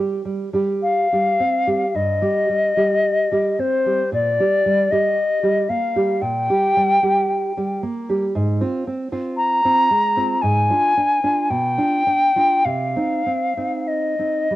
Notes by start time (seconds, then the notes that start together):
Already playing: G3 G4
0.25 G3
0.53 G3 G4
0.82 F5
1.12 G3 G4
1.40 C4
1.67 G3 G4
1.95 G2 D#5
2.22 G3 G4
2.49 G3
2.77 G3 G4
3.31 G3 G4
3.59 C4 C5
3.86 G3 G4
4.12 A#2 D5
4.40 G3 G4
4.66 G3
4.91 G3 G4 D#5
5.43 G3 G4
5.69 A#3 F5
5.96 G3 G4
6.21 A#2 G5
6.49 G3 G4
6.77 G3
7.03 G3 G4
7.57 G3 G4
7.83 A#3
8.09 G3 G4
8.35 G#2
8.61 C4 F4
8.87 C4
9.12 C4 F4
9.37 A#5
9.65 C4 F4
9.90 G#3
10.17 C4 F4
10.42 G#2 G#5
10.70 D4 F4
10.97 D4
11.24 D4 F4
11.50 B2 G5
11.78 D4 F4
12.07 D4
12.36 D4 F4
12.65 C3 F5
12.96 C4 D#4
13.26 C4
13.57 C4 D#4
13.87 D#5
14.19 C4 D#4
14.50 G3